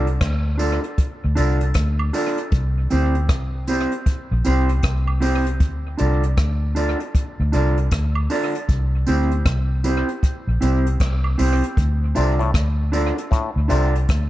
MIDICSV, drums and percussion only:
0, 0, Header, 1, 2, 480
1, 0, Start_track
1, 0, Key_signature, -1, "minor"
1, 0, Tempo, 770218
1, 1571, Time_signature, 4, 2, 24, 8
1, 8909, End_track
2, 0, Start_track
2, 0, Title_t, "Drums"
2, 42, Note_on_c, 9, 42, 46
2, 104, Note_off_c, 9, 42, 0
2, 130, Note_on_c, 9, 42, 74
2, 131, Note_on_c, 9, 36, 121
2, 131, Note_on_c, 9, 37, 118
2, 193, Note_off_c, 9, 36, 0
2, 193, Note_off_c, 9, 37, 0
2, 193, Note_off_c, 9, 42, 0
2, 368, Note_on_c, 9, 42, 52
2, 369, Note_on_c, 9, 54, 63
2, 431, Note_off_c, 9, 42, 0
2, 431, Note_off_c, 9, 54, 0
2, 521, Note_on_c, 9, 42, 49
2, 584, Note_off_c, 9, 42, 0
2, 611, Note_on_c, 9, 36, 97
2, 611, Note_on_c, 9, 42, 83
2, 673, Note_off_c, 9, 36, 0
2, 673, Note_off_c, 9, 42, 0
2, 852, Note_on_c, 9, 54, 49
2, 853, Note_on_c, 9, 42, 68
2, 914, Note_off_c, 9, 54, 0
2, 915, Note_off_c, 9, 42, 0
2, 1002, Note_on_c, 9, 42, 52
2, 1064, Note_off_c, 9, 42, 0
2, 1084, Note_on_c, 9, 42, 94
2, 1091, Note_on_c, 9, 36, 102
2, 1091, Note_on_c, 9, 37, 104
2, 1146, Note_off_c, 9, 42, 0
2, 1153, Note_off_c, 9, 36, 0
2, 1154, Note_off_c, 9, 37, 0
2, 1243, Note_on_c, 9, 76, 65
2, 1305, Note_off_c, 9, 76, 0
2, 1330, Note_on_c, 9, 46, 75
2, 1334, Note_on_c, 9, 54, 60
2, 1392, Note_off_c, 9, 46, 0
2, 1397, Note_off_c, 9, 54, 0
2, 1482, Note_on_c, 9, 42, 57
2, 1544, Note_off_c, 9, 42, 0
2, 1569, Note_on_c, 9, 42, 76
2, 1571, Note_on_c, 9, 36, 106
2, 1631, Note_off_c, 9, 42, 0
2, 1633, Note_off_c, 9, 36, 0
2, 1809, Note_on_c, 9, 42, 61
2, 1812, Note_on_c, 9, 54, 51
2, 1871, Note_off_c, 9, 42, 0
2, 1874, Note_off_c, 9, 54, 0
2, 1961, Note_on_c, 9, 42, 47
2, 2024, Note_off_c, 9, 42, 0
2, 2050, Note_on_c, 9, 36, 119
2, 2051, Note_on_c, 9, 42, 79
2, 2052, Note_on_c, 9, 37, 111
2, 2112, Note_off_c, 9, 36, 0
2, 2114, Note_off_c, 9, 37, 0
2, 2114, Note_off_c, 9, 42, 0
2, 2289, Note_on_c, 9, 42, 57
2, 2293, Note_on_c, 9, 54, 62
2, 2351, Note_off_c, 9, 42, 0
2, 2355, Note_off_c, 9, 54, 0
2, 2440, Note_on_c, 9, 42, 52
2, 2502, Note_off_c, 9, 42, 0
2, 2531, Note_on_c, 9, 42, 82
2, 2532, Note_on_c, 9, 36, 91
2, 2594, Note_off_c, 9, 36, 0
2, 2594, Note_off_c, 9, 42, 0
2, 2770, Note_on_c, 9, 54, 52
2, 2774, Note_on_c, 9, 42, 70
2, 2833, Note_off_c, 9, 54, 0
2, 2836, Note_off_c, 9, 42, 0
2, 2922, Note_on_c, 9, 42, 51
2, 2985, Note_off_c, 9, 42, 0
2, 3009, Note_on_c, 9, 42, 93
2, 3013, Note_on_c, 9, 36, 109
2, 3016, Note_on_c, 9, 37, 108
2, 3071, Note_off_c, 9, 42, 0
2, 3075, Note_off_c, 9, 36, 0
2, 3079, Note_off_c, 9, 37, 0
2, 3163, Note_on_c, 9, 76, 61
2, 3225, Note_off_c, 9, 76, 0
2, 3250, Note_on_c, 9, 46, 69
2, 3255, Note_on_c, 9, 54, 61
2, 3312, Note_off_c, 9, 46, 0
2, 3318, Note_off_c, 9, 54, 0
2, 3405, Note_on_c, 9, 42, 58
2, 3468, Note_off_c, 9, 42, 0
2, 3491, Note_on_c, 9, 42, 77
2, 3492, Note_on_c, 9, 36, 97
2, 3553, Note_off_c, 9, 42, 0
2, 3554, Note_off_c, 9, 36, 0
2, 3729, Note_on_c, 9, 42, 60
2, 3730, Note_on_c, 9, 54, 51
2, 3792, Note_off_c, 9, 42, 0
2, 3792, Note_off_c, 9, 54, 0
2, 3884, Note_on_c, 9, 42, 48
2, 3946, Note_off_c, 9, 42, 0
2, 3972, Note_on_c, 9, 36, 113
2, 3973, Note_on_c, 9, 42, 76
2, 3974, Note_on_c, 9, 37, 114
2, 4034, Note_off_c, 9, 36, 0
2, 4036, Note_off_c, 9, 37, 0
2, 4036, Note_off_c, 9, 42, 0
2, 4213, Note_on_c, 9, 54, 64
2, 4215, Note_on_c, 9, 42, 58
2, 4275, Note_off_c, 9, 54, 0
2, 4277, Note_off_c, 9, 42, 0
2, 4363, Note_on_c, 9, 42, 49
2, 4425, Note_off_c, 9, 42, 0
2, 4454, Note_on_c, 9, 36, 97
2, 4455, Note_on_c, 9, 42, 84
2, 4516, Note_off_c, 9, 36, 0
2, 4517, Note_off_c, 9, 42, 0
2, 4692, Note_on_c, 9, 54, 52
2, 4700, Note_on_c, 9, 42, 67
2, 4755, Note_off_c, 9, 54, 0
2, 4762, Note_off_c, 9, 42, 0
2, 4846, Note_on_c, 9, 42, 52
2, 4908, Note_off_c, 9, 42, 0
2, 4931, Note_on_c, 9, 42, 92
2, 4934, Note_on_c, 9, 36, 103
2, 4939, Note_on_c, 9, 37, 105
2, 4993, Note_off_c, 9, 42, 0
2, 4996, Note_off_c, 9, 36, 0
2, 5001, Note_off_c, 9, 37, 0
2, 5082, Note_on_c, 9, 76, 63
2, 5144, Note_off_c, 9, 76, 0
2, 5172, Note_on_c, 9, 54, 60
2, 5175, Note_on_c, 9, 46, 73
2, 5235, Note_off_c, 9, 54, 0
2, 5237, Note_off_c, 9, 46, 0
2, 5330, Note_on_c, 9, 42, 56
2, 5392, Note_off_c, 9, 42, 0
2, 5414, Note_on_c, 9, 36, 107
2, 5415, Note_on_c, 9, 42, 77
2, 5476, Note_off_c, 9, 36, 0
2, 5477, Note_off_c, 9, 42, 0
2, 5649, Note_on_c, 9, 54, 52
2, 5654, Note_on_c, 9, 42, 64
2, 5712, Note_off_c, 9, 54, 0
2, 5717, Note_off_c, 9, 42, 0
2, 5804, Note_on_c, 9, 42, 47
2, 5867, Note_off_c, 9, 42, 0
2, 5892, Note_on_c, 9, 36, 117
2, 5893, Note_on_c, 9, 42, 73
2, 5894, Note_on_c, 9, 37, 117
2, 5955, Note_off_c, 9, 36, 0
2, 5956, Note_off_c, 9, 37, 0
2, 5956, Note_off_c, 9, 42, 0
2, 6133, Note_on_c, 9, 42, 56
2, 6133, Note_on_c, 9, 54, 62
2, 6195, Note_off_c, 9, 42, 0
2, 6196, Note_off_c, 9, 54, 0
2, 6285, Note_on_c, 9, 42, 47
2, 6347, Note_off_c, 9, 42, 0
2, 6375, Note_on_c, 9, 36, 88
2, 6377, Note_on_c, 9, 42, 84
2, 6437, Note_off_c, 9, 36, 0
2, 6440, Note_off_c, 9, 42, 0
2, 6617, Note_on_c, 9, 42, 73
2, 6617, Note_on_c, 9, 54, 51
2, 6679, Note_off_c, 9, 42, 0
2, 6679, Note_off_c, 9, 54, 0
2, 6771, Note_on_c, 9, 42, 52
2, 6833, Note_off_c, 9, 42, 0
2, 6855, Note_on_c, 9, 42, 96
2, 6856, Note_on_c, 9, 36, 102
2, 6862, Note_on_c, 9, 37, 101
2, 6917, Note_off_c, 9, 42, 0
2, 6918, Note_off_c, 9, 36, 0
2, 6925, Note_off_c, 9, 37, 0
2, 7006, Note_on_c, 9, 76, 61
2, 7069, Note_off_c, 9, 76, 0
2, 7096, Note_on_c, 9, 46, 71
2, 7098, Note_on_c, 9, 54, 60
2, 7159, Note_off_c, 9, 46, 0
2, 7160, Note_off_c, 9, 54, 0
2, 7252, Note_on_c, 9, 42, 58
2, 7314, Note_off_c, 9, 42, 0
2, 7336, Note_on_c, 9, 36, 107
2, 7339, Note_on_c, 9, 42, 75
2, 7398, Note_off_c, 9, 36, 0
2, 7401, Note_off_c, 9, 42, 0
2, 7575, Note_on_c, 9, 54, 51
2, 7578, Note_on_c, 9, 42, 62
2, 7637, Note_off_c, 9, 54, 0
2, 7641, Note_off_c, 9, 42, 0
2, 7729, Note_on_c, 9, 42, 47
2, 7791, Note_off_c, 9, 42, 0
2, 7816, Note_on_c, 9, 36, 114
2, 7820, Note_on_c, 9, 37, 115
2, 7820, Note_on_c, 9, 42, 76
2, 7878, Note_off_c, 9, 36, 0
2, 7882, Note_off_c, 9, 42, 0
2, 7883, Note_off_c, 9, 37, 0
2, 8060, Note_on_c, 9, 42, 52
2, 8060, Note_on_c, 9, 54, 66
2, 8122, Note_off_c, 9, 54, 0
2, 8123, Note_off_c, 9, 42, 0
2, 8214, Note_on_c, 9, 42, 51
2, 8276, Note_off_c, 9, 42, 0
2, 8299, Note_on_c, 9, 36, 90
2, 8305, Note_on_c, 9, 42, 89
2, 8362, Note_off_c, 9, 36, 0
2, 8368, Note_off_c, 9, 42, 0
2, 8537, Note_on_c, 9, 54, 51
2, 8545, Note_on_c, 9, 42, 73
2, 8599, Note_off_c, 9, 54, 0
2, 8607, Note_off_c, 9, 42, 0
2, 8696, Note_on_c, 9, 42, 55
2, 8759, Note_off_c, 9, 42, 0
2, 8779, Note_on_c, 9, 42, 98
2, 8780, Note_on_c, 9, 36, 104
2, 8786, Note_on_c, 9, 37, 102
2, 8841, Note_off_c, 9, 42, 0
2, 8843, Note_off_c, 9, 36, 0
2, 8849, Note_off_c, 9, 37, 0
2, 8909, End_track
0, 0, End_of_file